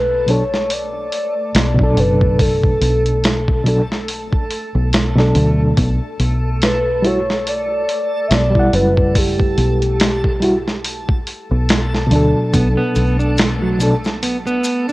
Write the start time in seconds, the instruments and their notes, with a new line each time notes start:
Already playing: fingered electric bass B1, synth texture A3 A4, soft synth lead B4
0.26 reed electric piano B2 F#3 D4, soft synth lead C#5, open hi-hat
0.31 reed electric piano A4
0.54 snare
0.70 soft synth lead D5, open hi-hat
1.12 open hi-hat
1.55 fingered electric bass B1, soft synth lead D5, snare, open hi-hat
1.75 reed electric piano B2 F#3
1.79 reed electric piano D4, kick
1.84 reed electric piano A4
1.97 fingered electric bass F#1, soft synth lead B4, open hi-hat
2.21 kick
2.36 soft synth lead B4, kick, open hi-hat
2.41 soft synth lead A4
2.63 kick
2.81 fingered electric bass B1, open hi-hat
3.06 closed hi-hat
3.24 snare, open hi-hat
3.48 kick
3.64 reed electric piano B2 F#3 D4, open hi-hat
3.68 reed electric piano A4
3.92 snare
4.08 open hi-hat
4.33 kick
4.51 open hi-hat
4.75 fingered electric bass B1
4.93 snare, open hi-hat
5.15 reed electric piano B2 F#3 D4, snare
5.20 reed electric piano A4
5.35 fingered electric bass D2, open hi-hat
5.77 fingered electric bass B1, kick, open hi-hat
6.20 fingered electric bass B1, open hi-hat
6.62 soft synth lead B4, snare, open hi-hat
7.02 reed electric piano G3 E4, soft synth lead C#5, open hi-hat
7.07 reed electric piano F#4
7.30 snare
7.47 soft synth lead D5, open hi-hat
7.89 open hi-hat
8.27 fingered electric bass B1, soft synth lead E5, open hi-hat
8.32 soft synth lead D5, snare
8.51 reed electric piano G3
8.55 reed electric piano E4, kick
8.59 reed electric piano F#5
8.73 fingered electric bass F#1, soft synth lead B4, open hi-hat
8.97 kick
9.15 soft synth lead G4, kick, open hi-hat
9.40 kick
9.58 fingered electric bass B1, open hi-hat
9.82 closed hi-hat
10.00 snare, open hi-hat
10.24 kick
10.40 reed electric piano G3 E4, open hi-hat
10.44 reed electric piano F#4
10.68 snare
10.85 open hi-hat
11.09 kick
11.27 open hi-hat
11.51 fingered electric bass B1
11.69 snare, open hi-hat
11.95 snare
12.07 reed electric piano B2 F#3
12.11 fingered electric bass D2, reed electric piano D4, open hi-hat
12.16 reed electric piano A4
12.54 fingered electric bass B1, clean electric guitar B3, kick, open hi-hat, maracas
12.77 clean electric guitar B3
12.95 fingered electric bass B1, open hi-hat, maracas
13.19 clean electric guitar D4, maracas
13.37 snare, open hi-hat, maracas
13.62 clean electric guitar F#3
13.78 reed electric piano B2 F#3 D4, open hi-hat, maracas
13.83 reed electric piano A4
14.04 snare, maracas
14.23 clean electric guitar B3, open hi-hat, maracas
14.47 clean electric guitar B3, maracas
14.64 open hi-hat, maracas
14.89 clean electric guitar D4, maracas